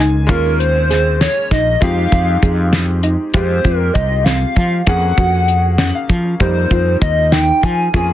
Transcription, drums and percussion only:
0.29 kick loud
0.29 closed hi-hat medium
0.60 closed hi-hat medium
0.91 snare soft
0.91 closed hi-hat medium
1.21 snare loud
1.21 closed hi-hat medium
1.51 kick medium
1.51 snare soft
1.51 closed hi-hat medium
1.82 kick loud
1.82 closed hi-hat medium
2.12 kick medium
2.12 closed hi-hat medium
2.42 kick medium
2.42 closed hi-hat medium
2.73 snare loud
2.73 closed hi-hat medium
3.03 closed hi-hat medium
3.34 kick medium
3.34 closed hi-hat medium
3.64 kick medium
3.64 closed hi-hat medium
3.95 kick medium
3.95 closed hi-hat medium
4.26 snare loud
4.26 closed hi-hat medium
4.56 kick medium
4.56 closed hi-hat medium
4.87 kick loud
4.87 closed hi-hat medium
5.17 kick medium
5.17 closed hi-hat medium
5.48 closed hi-hat medium
5.78 snare loud
5.78 closed hi-hat medium
6.09 kick medium
6.09 closed hi-hat medium
6.40 kick medium
6.40 closed hi-hat medium
6.71 kick medium
6.71 closed hi-hat medium
7.01 kick medium
7.01 closed hi-hat medium
7.32 snare loud
7.32 closed hi-hat medium
7.63 kick medium
7.63 closed hi-hat medium
7.94 kick medium
7.94 closed hi-hat medium

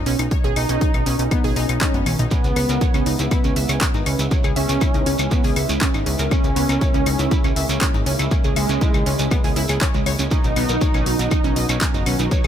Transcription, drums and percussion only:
0.06 open hi-hat loud
0.19 closed hi-hat medium
0.19 claves medium
0.31 kick loud
0.31 closed hi-hat medium
0.44 closed hi-hat soft
0.56 open hi-hat loud
0.56 claves medium
0.69 closed hi-hat medium
0.81 kick loud
0.81 closed hi-hat medium
0.94 closed hi-hat soft
0.94 claves medium
1.06 open hi-hat loud
1.19 closed hi-hat medium
1.31 kick loud
1.31 closed hi-hat medium
1.31 claves medium
1.44 open hi-hat medium
1.56 open hi-hat loud
1.69 closed hi-hat medium
1.69 claves medium
1.81 kick loud
1.81 clap loud
1.81 closed hi-hat medium
1.81 high tom medium
1.94 closed hi-hat soft
1.94 high tom medium
2.06 open hi-hat loud
2.06 mid tom medium
2.06 claves medium
2.19 closed hi-hat medium
2.19 mid tom medium
2.31 kick loud
2.31 closed hi-hat medium
2.31 shekere medium
2.44 closed hi-hat soft
2.44 shekere soft
2.56 open hi-hat loud
2.56 claves medium
2.69 closed hi-hat medium
2.69 shekere medium
2.81 kick loud
2.81 closed hi-hat medium
2.81 shekere medium
2.94 closed hi-hat soft
2.94 claves medium
2.94 shekere soft
3.06 open hi-hat loud
3.19 closed hi-hat medium
3.19 shekere medium
3.31 kick loud
3.31 closed hi-hat medium
3.31 claves medium
3.31 shekere medium
3.44 closed hi-hat soft
3.44 shekere soft
3.56 open hi-hat loud
3.69 closed hi-hat medium
3.69 claves medium
3.69 shekere medium
3.81 kick loud
3.81 clap loud
3.81 closed hi-hat medium
3.81 shekere medium
3.94 closed hi-hat soft
3.94 shekere soft
4.06 open hi-hat loud
4.06 claves medium
4.19 closed hi-hat medium
4.19 shekere medium
4.31 kick loud
4.31 closed hi-hat medium
4.31 shekere medium
4.44 closed hi-hat soft
4.44 claves medium
4.44 shekere soft
4.56 open hi-hat loud
4.69 closed hi-hat medium
4.69 shekere medium
4.81 kick loud
4.81 closed hi-hat medium
4.81 claves medium
4.81 shekere medium
4.94 closed hi-hat soft
4.94 shekere soft
5.06 open hi-hat loud
5.18 closed hi-hat medium
5.18 claves medium
5.18 shekere medium
5.31 kick loud
5.31 closed hi-hat medium
5.31 shekere medium
5.44 open hi-hat medium
5.44 shekere soft
5.56 open hi-hat loud
5.56 claves medium
5.69 closed hi-hat medium
5.69 shekere medium
5.81 kick loud
5.81 clap loud
5.81 closed hi-hat medium
5.81 shekere medium
5.94 closed hi-hat soft
5.94 claves soft
5.94 shekere soft
6.06 open hi-hat loud
6.19 closed hi-hat medium
6.19 shekere medium
6.31 kick loud
6.31 closed hi-hat medium
6.31 claves soft
6.31 shekere medium
6.44 closed hi-hat soft
6.44 shekere soft
6.56 open hi-hat loud
6.69 closed hi-hat medium
6.69 claves soft
6.69 shekere medium
6.81 kick loud
6.81 closed hi-hat medium
6.81 shekere medium
6.94 closed hi-hat soft
6.94 shekere soft
7.06 open hi-hat loud
7.06 claves medium
7.19 closed hi-hat medium
7.19 shekere medium
7.31 kick loud
7.31 closed hi-hat medium
7.31 shekere medium
7.44 closed hi-hat soft
7.44 claves medium
7.44 shekere soft
7.56 open hi-hat loud
7.69 closed hi-hat medium
7.69 shekere medium
7.81 kick loud
7.81 clap loud
7.81 closed hi-hat medium
7.81 claves soft
7.81 shekere medium
7.94 closed hi-hat soft
7.94 shekere soft
8.06 open hi-hat loud
8.19 closed hi-hat medium
8.19 claves medium
8.19 shekere medium
8.31 kick loud
8.31 closed hi-hat medium
8.31 shekere medium
8.44 closed hi-hat soft
8.44 shekere soft
8.56 open hi-hat loud
8.56 claves medium
8.69 closed hi-hat medium
8.69 shekere medium
8.81 kick loud
8.81 closed hi-hat medium
8.81 shekere medium
8.94 closed hi-hat soft
8.94 claves medium
8.94 shekere soft
9.06 open hi-hat loud
9.19 closed hi-hat medium
9.19 shekere medium
9.31 kick loud
9.31 closed hi-hat medium
9.31 claves medium
9.31 shekere medium
9.44 open hi-hat medium
9.44 shekere soft
9.56 open hi-hat loud
9.68 closed hi-hat medium
9.68 claves soft
9.68 shekere medium
9.81 kick loud
9.81 clap loud
9.81 closed hi-hat soft
9.81 shekere medium
9.94 closed hi-hat soft
9.94 shekere soft
10.06 open hi-hat loud
10.06 claves medium
10.19 closed hi-hat medium
10.19 shekere medium
10.31 kick loud
10.31 closed hi-hat medium
10.31 shekere medium
10.44 closed hi-hat soft
10.44 shekere soft
10.56 open hi-hat loud
10.56 claves medium
10.69 closed hi-hat medium
10.69 shekere medium
10.81 kick loud
10.81 closed hi-hat medium
10.81 shekere medium
10.94 closed hi-hat soft
10.94 claves medium
10.94 shekere soft
11.06 open hi-hat loud
11.19 closed hi-hat medium
11.19 shekere medium
11.31 kick loud
11.31 closed hi-hat medium
11.31 claves medium
11.31 shekere medium
11.44 closed hi-hat soft
11.44 shekere soft
11.56 open hi-hat loud
11.69 closed hi-hat medium
11.69 claves medium
11.69 shekere medium
11.81 kick loud
11.81 clap loud
11.81 closed hi-hat medium
11.81 shekere medium
11.94 closed hi-hat soft
11.94 shekere soft
12.06 open hi-hat loud
12.06 claves medium
12.19 closed hi-hat medium
12.19 shekere medium
12.31 kick loud
12.31 closed hi-hat medium
12.31 shekere medium
12.44 shekere soft

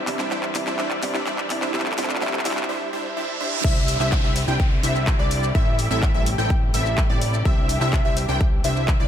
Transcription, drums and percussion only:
0.07 clap medium
0.07 open hi-hat loud
0.07 shaker medium
0.19 clap medium
0.19 shaker soft
0.31 clap loud
0.31 shaker soft
0.43 clap medium
0.55 clap loud
0.55 open hi-hat medium
0.55 shaker medium
0.67 clap medium
0.67 shaker soft
0.79 clap medium
0.79 shaker soft
0.91 clap medium
1.03 clap loud
1.03 open hi-hat loud
1.03 shaker medium
1.15 clap medium
1.15 shaker soft
1.26 clap loud
1.26 shaker soft
1.38 clap medium
1.50 clap loud
1.50 open hi-hat medium
1.50 shaker medium
1.62 clap medium
1.62 shaker soft
1.74 clap loud
1.74 shaker soft
1.80 clap medium
1.86 clap medium
1.92 clap medium
1.98 clap loud
1.98 open hi-hat loud
1.98 shaker medium
2.04 clap medium
2.10 clap medium
2.10 shaker soft
2.15 clap medium
2.21 clap loud
2.21 shaker soft
2.27 clap medium
2.33 clap medium
2.39 clap medium
2.45 clap loud
2.45 open hi-hat loud
2.45 shaker medium
2.51 clap loud
2.57 clap medium
2.57 shaker soft
2.63 clap medium
3.64 kick loud
3.64 crash loud
3.64 shaker soft
3.88 open hi-hat loud
3.88 shaker medium
4.00 clap soft
4.00 shaker soft
4.12 kick loud
4.12 clap loud
4.12 shaker soft
4.36 open hi-hat medium
4.36 shaker medium
4.48 shaker soft
4.60 kick loud
4.60 shaker soft
4.83 open hi-hat loud
4.83 shaker medium
4.96 shaker soft
5.07 kick loud
5.07 clap loud
5.07 shaker soft
5.31 open hi-hat medium
5.31 shaker medium
5.43 shaker soft
5.55 kick loud
5.55 shaker soft
5.79 open hi-hat loud
5.79 shaker medium
5.91 shaker soft
6.02 kick loud
6.02 clap loud
6.02 shaker soft
6.26 open hi-hat loud
6.26 shaker medium
6.39 shaker soft
6.50 kick loud
6.50 shaker soft
6.74 open hi-hat loud
6.74 shaker medium
6.86 shaker soft
6.98 kick loud
6.98 clap loud
6.98 shaker soft
7.22 open hi-hat loud
7.22 shaker medium
7.34 shaker soft
7.45 kick loud
7.45 shaker soft
7.69 open hi-hat loud
7.69 shaker medium
7.81 clap soft
7.81 shaker soft
7.93 kick loud
7.93 clap loud
7.93 shaker soft
8.17 open hi-hat loud
8.17 shaker medium
8.29 shaker soft
8.41 kick loud
8.41 shaker soft
8.64 open hi-hat loud
8.64 shaker medium
8.77 shaker soft
8.88 kick loud
8.88 clap loud
8.88 shaker soft

